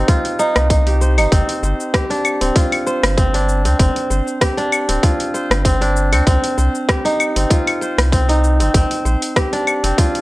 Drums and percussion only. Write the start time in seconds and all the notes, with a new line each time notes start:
0.08 kick, open hi-hat, cabasa
0.25 open hi-hat
0.39 cabasa
0.56 cross-stick, open hi-hat, cabasa
0.70 kick, open hi-hat, cabasa
0.87 open hi-hat
1.01 cabasa
1.18 open hi-hat, cabasa, claves
1.32 kick, open hi-hat, cabasa
1.49 open hi-hat
1.63 cabasa
1.80 cabasa
1.94 kick, cross-stick, open hi-hat, cabasa
2.11 open hi-hat
2.25 cabasa, claves
2.41 open hi-hat, cabasa
2.56 kick, open hi-hat, cabasa
2.72 open hi-hat, claves
2.87 cabasa
3.03 cross-stick, open hi-hat, cabasa
3.18 kick, open hi-hat, cabasa
3.34 open hi-hat
3.49 cabasa
3.65 open hi-hat, cabasa
3.79 kick, open hi-hat, cabasa
3.96 open hi-hat
4.11 cabasa
4.28 cabasa
4.41 kick, cross-stick, open hi-hat, cabasa
4.58 open hi-hat
4.72 cabasa, claves
4.89 open hi-hat, cabasa
5.03 kick, open hi-hat, cabasa
5.20 open hi-hat
5.35 cabasa
5.51 cross-stick, open hi-hat, cabasa
5.65 kick, open hi-hat, cabasa
5.82 open hi-hat
5.97 cabasa
6.13 open hi-hat, cabasa, claves
6.27 kick, open hi-hat, cabasa
6.44 open hi-hat
6.58 cabasa
6.75 cabasa
6.89 kick, cross-stick, open hi-hat, cabasa
7.06 open hi-hat
7.20 cabasa, claves
7.36 open hi-hat, cabasa
7.51 kick, open hi-hat, cabasa
7.67 open hi-hat, claves
7.82 cabasa
7.98 cross-stick, open hi-hat, cabasa
8.12 kick, open hi-hat, cabasa
8.29 open hi-hat
8.44 cabasa
8.60 open hi-hat, cabasa
8.74 kick, open hi-hat, cabasa
8.91 open hi-hat
9.06 cabasa
9.22 open hi-hat, cabasa
9.36 kick, cross-stick, open hi-hat, cabasa
9.53 open hi-hat
9.67 cabasa, claves
9.84 open hi-hat, cabasa
9.98 kick, open hi-hat, cabasa
10.15 open hi-hat